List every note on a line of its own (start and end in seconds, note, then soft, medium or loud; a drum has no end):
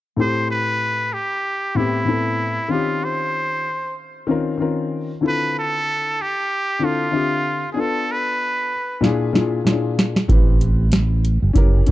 0.17 1.12 A2 medium
0.17 1.12 A3 medium
0.17 1.13 C4 medium
0.17 1.13 E4 medium
0.17 1.14 G4 medium
0.17 0.49 C5 loud
0.51 1.15 B4 loud
1.13 1.78 G4 medium
1.75 2.00 A2 medium
1.75 2.01 B3 medium
1.75 2.01 C4 medium
1.75 2.72 E4 medium
1.75 2.02 E4 medium
1.75 2.02 G4 medium
2.05 2.56 A2 medium
2.05 2.57 B3 medium
2.05 2.57 C4 medium
2.05 2.58 E4 medium
2.09 2.58 A4 medium
2.68 3.64 D#3 medium
2.68 3.65 C4 medium
2.68 3.65 C#4 medium
2.68 3.06 F4 medium
2.68 3.66 F4 medium
2.73 3.66 G4 medium
3.04 3.98 C5 medium
4.27 4.53 D#3 medium
4.27 4.53 C4 medium
4.27 4.54 C#4 medium
4.27 4.54 F4 medium
4.31 4.55 A#4 medium
4.58 5.09 D#3 medium
4.58 5.09 C4 medium
4.58 5.10 C#4 medium
4.58 5.10 F4 medium
4.62 5.11 A#4 medium
5.21 6.17 D3 medium
5.21 6.17 C4 medium
5.21 6.18 E4 medium
5.21 6.18 F4 medium
5.21 6.19 A4 medium
5.28 5.55 B4 loud
5.59 6.23 A4 loud
6.22 6.86 G4 loud
6.79 7.05 D3 medium
6.79 7.06 C4 medium
6.79 7.06 E4 medium
6.79 7.07 F4 medium
6.79 7.07 A4 medium
6.85 7.72 F4 medium
7.11 7.62 D3 medium
7.11 7.62 C4 medium
7.11 7.63 F4 medium
7.11 7.63 G4 medium
7.11 7.63 E5 medium
7.72 8.70 B3 medium
7.72 8.71 D4 medium
7.72 7.82 G#4 medium
7.77 8.71 F4 medium
7.77 8.71 A4 medium
7.77 8.13 A4 loud
8.12 9.05 B4 medium
9.01 9.28 A#2 medium
9.01 9.29 D4 medium
9.01 9.29 E4 medium
9.01 9.29 F4 medium
9.01 snare medium
9.05 9.30 G#4 loud
9.33 9.58 A#2 medium
9.33 9.59 D4 medium
9.33 9.60 E4 medium
9.33 9.60 F4 medium
9.33 9.60 G#4 medium
9.33 snare medium
9.64 10.15 A#2 medium
9.64 9.73 C#4 medium
9.64 10.16 E4 medium
9.64 10.16 F4 medium
9.64 10.17 G#4 medium
9.64 snare medium
9.72 10.18 D4 medium
9.99 snare medium
10.16 snare medium
10.28 11.38 A1 loud
10.28 11.23 C4 medium
10.28 11.24 E4 medium
10.28 11.25 G4 medium
10.28 kick loud
10.28 closed hi-hat medium
10.32 11.25 B4 medium
10.61 closed hi-hat medium
10.92 snare loud
10.92 closed hi-hat medium
11.25 closed hi-hat medium
11.42 11.53 G1 medium
11.53 11.80 F#1 medium
11.53 11.81 C#4 medium
11.53 11.81 E4 medium
11.53 11.82 G4 medium
11.53 11.83 A#4 loud
11.53 kick medium
11.53 closed hi-hat medium
11.86 11.91 C#4 medium
11.86 11.91 E4 medium
11.86 closed hi-hat medium